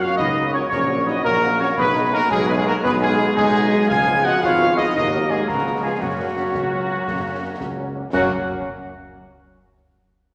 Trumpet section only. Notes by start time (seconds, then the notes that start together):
0.01 F5
0.17 D#5
0.53 C#5
0.69 C#5
1.08 D#5
1.24 A#4
1.61 C#5
1.80 B4
2.14 A#4
2.31 G#4
2.48 B4
2.58 G#4
2.66 A#4
2.84 B4
3.01 G#4
3.36 G#4
3.90 G#5
4.25 F#5
4.43 F5
4.77 D#5
4.96 D#5
5.30 G#4
5.48 A#4
5.83 G#4
6.01 F#4
8.13 F#4